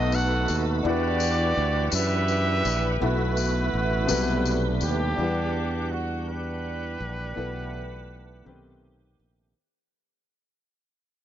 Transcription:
Already playing: fingered electric bass B1, grand piano B2 B3 D#4 F#4 A4 B4, tonewheel organ A3 B3 D#4 F#4 B4, horn section F#4 A4 D#5
0.12 horn section F#5, tambourine
0.48 fingered electric bass D#2, tambourine
0.83 fingered electric bass E2, tonewheel organ E3 D4 E4 B4 F#5, grand piano E3 D4 E4 F#5, horn section F#4 G4
0.87 grand piano B4, horn section D5
1.20 tambourine
1.57 fingered electric bass D2
1.92 fingered electric bass F#2, horn section G4 B4, tambourine
1.96 horn section E5
2.28 tambourine
2.65 fingered electric bass A#1, tambourine
3.00 fingered electric bass B1, grand piano B2 B3 E4 F#4 A4 B4, tonewheel organ A3 B3 E4 F#4 B4, horn section E4 F#4
3.04 horn section B4
3.37 tambourine
3.74 fingered electric bass A1
4.07 fingered electric bass B1, grand piano B2 C3 G3 B3 A4 B4, tonewheel organ G3 A3 B3 B4, tambourine
4.46 tambourine
4.81 fingered electric bass D#2, horn section B3 D4 G4, tambourine
5.16 fingered electric bass E2, grand piano E3 D4 E4 F#5, tonewheel organ E3 G3 D4 F4
5.20 grand piano G3 B4
5.26 tonewheel organ F#5
5.91 horn section F#4
6.27 horn section D4 G4 B4
7.00 fingered electric bass A#1
7.35 fingered electric bass B1, grand piano B2 B3 E4 A4 B4 F#5, tonewheel organ E3 A3 B3 F#5
8.45 fingered electric bass B1, tonewheel organ C3 D3 A3 G4, grand piano D#3 B3 C4 G4 A4 B4
8.53 tonewheel organ D#3
9.20 fingered electric bass A#1

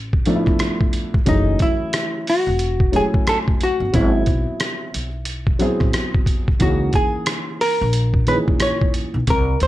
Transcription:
Already playing: upright bass A1, hollow-body jazz guitar G4
0.13 kick
0.26 upright piano F3 A3 B3 D4 D#4, closed hi-hat
0.36 upright piano E4
0.46 upright bass G1, kick, cross-stick
0.59 cross-stick, closed hi-hat
0.81 kick
0.93 closed hi-hat
1.14 kick
1.26 upright bass F#1, upright piano E3 F#3 A3 C#4 G#4, hollow-body jazz guitar D#4, kick, closed hi-hat
1.59 hollow-body jazz guitar E4, kick, closed hi-hat
1.93 cross-stick, closed hi-hat
2.27 hollow-body jazz guitar F#4, open hi-hat
2.47 upright bass E1
2.59 closed hi-hat
2.80 kick
2.92 upright piano F#3 A3 C#4 E4 G4, hollow-body jazz guitar G#4, closed hi-hat
3.02 upright piano G#5
3.14 kick
3.27 hollow-body jazz guitar A4, cross-stick, closed hi-hat
3.48 kick
3.61 hollow-body jazz guitar F#4, closed hi-hat
3.80 upright bass G1
3.93 upright bass G#1, upright piano F#3 B3 C4 E4 G#4, hollow-body jazz guitar E4, kick, closed hi-hat
4.26 upright bass B1, kick, closed hi-hat
4.60 cross-stick, closed hi-hat
4.94 upright bass B1, closed hi-hat
5.25 closed hi-hat
5.47 kick
5.59 upright piano F#3 B3 C4 E4 G#4, closed hi-hat
5.80 upright bass A1, kick, cross-stick
5.93 cross-stick, closed hi-hat
6.14 kick
6.26 kick, closed hi-hat
6.48 kick
6.59 upright bass C#2, upright piano E3 A#3 C#4 D#4 G#4, hollow-body jazz guitar F#4, kick, closed hi-hat
6.93 hollow-body jazz guitar G#4, kick, closed hi-hat
7.26 cross-stick, closed hi-hat
7.61 hollow-body jazz guitar A#4, open hi-hat
7.81 upright bass A#1
7.93 closed hi-hat
8.14 kick
8.27 upright piano A#2 D#3 C#4 D#4 G#4, hollow-body jazz guitar B4, closed hi-hat
8.33 upright piano E3
8.48 kick
8.60 hollow-body jazz guitar C#5, cross-stick, closed hi-hat
8.81 kick
8.94 closed hi-hat
9.14 upright bass B1
9.27 upright bass C2, hollow-body jazz guitar A#4, kick, closed hi-hat
9.60 upright bass D#2, hollow-body jazz guitar C5, closed hi-hat

